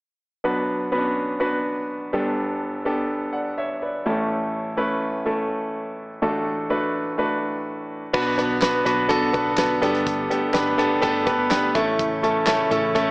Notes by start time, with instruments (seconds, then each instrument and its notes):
0.44 grand piano B1 B2 B3 D4 F#4 B4
0.92 grand piano B3 C#4 F#4 B4
0.98 grand piano D4
1.40 grand piano B3 D4 F#4 B4
2.13 grand piano G1 G2 B3 D4 G4 A4
2.85 grand piano B3 D4 G4 A4
3.33 grand piano D5 F#5
3.58 grand piano C#5 E5
3.82 grand piano B4 D5
4.06 grand piano A1 A2 A3 C#4 E4 A4
4.77 grand piano A3 C#4 E4 B4
5.26 grand piano A3 C#4 E4 A4
6.22 grand piano A1 A2 A3 D4 F#4 A4
6.70 grand piano A3 D4 F#4 B4
7.18 grand piano A3 D4 F#4 B4
8.13 picked electric bass B1, grand piano B2 B3 D4 F#4 B4, analog synth pad D3 F#3 B3 F#4, kick, crash
8.38 grand piano B3 D4 F#4 B4, closed hi-hat
8.62 grand piano B3 D4 F#4 B4, snare, clap, closed hi-hat
8.85 picked electric bass B1, grand piano B3 D4 F#4 B4, closed hi-hat
9.09 grand piano B3 D4 F#4 A4, kick, closed hi-hat
9.33 picked electric bass B1, grand piano B3 D4 F#4 B4, kick, closed hi-hat
9.58 grand piano B3 D4 F#4 B4, snare, clap, closed hi-hat
9.82 picked electric bass G1, grand piano G2 B3 D4 G4 A4, analog synth pad A3 B3 G4, closed hi-hat
9.95 closed hi-hat
10.07 kick, closed hi-hat
10.30 grand piano B3 D4 G4 A4, closed hi-hat
10.53 picked electric bass G1, grand piano B3 D4 G4 B4, snare, clap, closed hi-hat
10.78 grand piano B3 D4 G4 A4, closed hi-hat
11.02 picked electric bass G1, grand piano B3 D4 G4 A4, kick, closed hi-hat
11.26 grand piano B3 D4 G4 B4, kick, closed hi-hat
11.50 grand piano B3 D4 G4 B4, snare, clap, closed hi-hat
11.75 picked electric bass A1, grand piano A2 A3 C#4 E4 A4, analog synth pad C#3 E3 E4, kick, closed hi-hat
11.99 kick, closed hi-hat
12.23 grand piano A3 C#4 E4 A4, closed hi-hat
12.46 grand piano A3 C#4 E4 A4, snare, clap, closed hi-hat
12.71 picked electric bass A1, grand piano A3 C#4 E4 A4, closed hi-hat
12.95 grand piano A3 C#4 E4 A4, kick, closed hi-hat